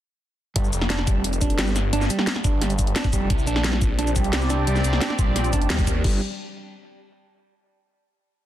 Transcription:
0.56 G1 G3, kick, closed hi-hat
0.64 shaker
0.73 F1, closed hi-hat, shaker
0.81 snare
0.90 D4, snare, closed hi-hat
0.99 snare
1.07 G3, kick, closed hi-hat, shaker
1.24 closed hi-hat
1.33 closed hi-hat, shaker
1.41 D4, kick, closed hi-hat, shaker
1.50 closed hi-hat
1.59 G1 G3, snare, closed hi-hat
1.67 shaker
1.76 snare, closed hi-hat, shaker
1.93 G1 D4, closed hi-hat
2.01 snare, shaker
2.10 G3, closed hi-hat, shaker
2.19 snare
2.27 snare, closed hi-hat
2.36 snare
2.44 G1 D4, kick, closed hi-hat, shaker
2.61 G3, snare, closed hi-hat
2.70 closed hi-hat, shaker
2.79 kick, closed hi-hat, shaker
2.87 closed hi-hat
2.96 D4, snare, closed hi-hat
3.04 kick, shaker
3.13 F1 G3, kick, closed hi-hat, shaker
3.30 C2 C4 G4 D5, kick, closed hi-hat
3.39 shaker
3.47 A#1 D4, closed hi-hat, shaker
3.56 snare
3.64 G3, snare, closed hi-hat
3.73 snare
3.82 kick, closed hi-hat, shaker
3.99 D4, closed hi-hat
4.07 closed hi-hat, shaker
4.16 G3, kick, closed hi-hat, shaker
4.24 closed hi-hat
4.33 C2, snare, closed hi-hat
4.42 shaker
4.50 D4, snare, closed hi-hat, shaker
4.67 C2 G3, closed hi-hat
4.76 snare, shaker
4.84 C2, closed hi-hat, shaker
4.93 snare
5.01 D4, snare, closed hi-hat
5.10 snare
5.19 A#1 G3, kick, closed hi-hat, shaker
5.36 snare, closed hi-hat
5.44 closed hi-hat, shaker
5.53 D4, kick, closed hi-hat, shaker
5.62 closed hi-hat
5.70 D#2 G3, snare, closed hi-hat
5.79 kick, shaker
5.87 kick, closed hi-hat, shaker
6.04 G1 G3 D4 G4, kick, crash

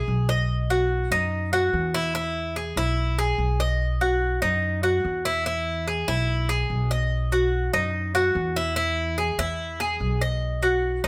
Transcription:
Already playing: G#4
0.08 B1
0.29 D#5
0.70 F#4
1.11 F#2 D#4
1.53 F#4
1.73 E2
1.94 E4
2.15 E4
2.56 G#4
2.76 B1 E4
3.19 G#4
3.38 B1
3.60 D#5
4.01 F#4
4.42 F#2 D#4
4.83 F#4
5.05 E2
5.25 E4
5.46 E4
5.88 G#4
6.08 B1 E4
6.49 G#4
6.70 B1
6.91 D#5
7.32 F#4
7.73 F#2 D#4
8.15 F#4
8.35 E2
8.56 E4
8.76 E4
9.18 G#4
9.38 E2 E4
9.80 G#4
10.00 B1
10.21 D#5
10.63 F#4
11.04 F#2 D#4

